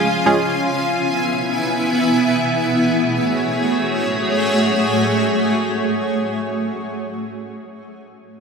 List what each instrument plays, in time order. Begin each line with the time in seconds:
Already playing: ambient pad C#4 F4 F5 G#5
0.26 synth keys G#3 C#4 F4 G#4
0.39 ambient pad B3 E4 E5
2.57 ambient pad A3 F#4 G#4 C#5